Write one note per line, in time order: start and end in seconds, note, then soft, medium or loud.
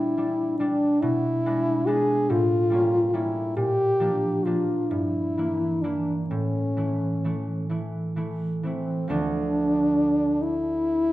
0.00 1.06 A#2 soft
0.00 0.16 G3 soft
0.00 1.06 A#3 soft
0.00 0.17 D4 soft
0.00 0.59 E4 medium
0.17 0.59 G3 soft
0.17 0.60 D4 soft
0.59 1.06 G3 soft
0.59 1.03 D4 medium
0.59 1.46 D4 soft
1.02 2.32 B2 soft
1.02 1.89 E4 medium
1.46 1.86 G#3 soft
1.46 1.86 B3 soft
1.46 1.87 D4 soft
1.87 2.32 G#3 soft
1.87 2.33 B3 soft
1.87 2.33 D4 soft
1.87 2.32 G#4 medium
2.30 3.60 A2 soft
2.30 3.16 F4 medium
2.70 3.12 G3 soft
2.70 3.13 A#3 soft
2.70 3.13 C#4 soft
3.13 3.60 G3 soft
3.13 4.00 A#3 soft
3.13 3.60 C#4 soft
3.13 3.57 E4 medium
3.57 4.94 A#2 soft
3.57 4.46 G4 medium
4.00 4.44 F3 soft
4.00 4.45 A#3 soft
4.00 4.45 D4 soft
4.45 4.94 F3 soft
4.45 5.37 A#3 soft
4.45 4.95 D4 soft
4.45 4.91 F4 medium
4.90 6.34 G2 soft
4.90 5.83 E4 medium
5.37 5.82 E3 soft
5.37 5.83 A#3 soft
5.37 5.83 E4 soft
5.82 6.34 E3 soft
5.82 6.34 A#3 soft
5.82 6.15 D4 soft
5.82 6.76 E4 soft
6.30 9.14 A2 soft
6.30 7.67 C#4 medium
6.77 7.23 E3 soft
6.77 7.24 A3 soft
6.77 7.24 E4 soft
7.24 7.68 E3 soft
7.24 7.69 A3 soft
7.24 7.70 E4 soft
7.70 8.15 E3 soft
7.70 8.15 A3 soft
7.70 8.16 E4 soft
8.16 8.63 E3 soft
8.16 8.64 A3 soft
8.16 8.64 E4 soft
8.63 9.14 E3 soft
8.63 9.08 A3 soft
8.63 9.12 C4 medium
8.63 9.14 E4 soft
9.08 11.13 D2 soft
9.08 11.13 F3 soft
9.08 11.13 A3 soft
9.08 10.43 D4 medium
9.08 11.13 D4 soft
10.42 11.13 E4 medium